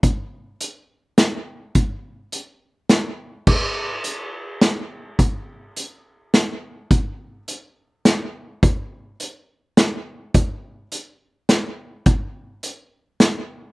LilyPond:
\new DrumStaff \with { instrumentName = "Drums" } \drummode { \time 3/4 \tempo 4 = 105 <hh bd>4 hh4 <hh sn>4 | <hh bd>4 hh4 <hh sn>4 | <cymc bd>4 hh4 <hh sn>4 | <hh bd>4 hh4 <hh sn>4 |
<hh bd>4 hh4 <hh sn>4 | <hh bd>4 hh4 <hh sn>4 | <hh bd>4 hh4 <hh sn>4 | <hh bd>4 hh4 <hh sn>4 | }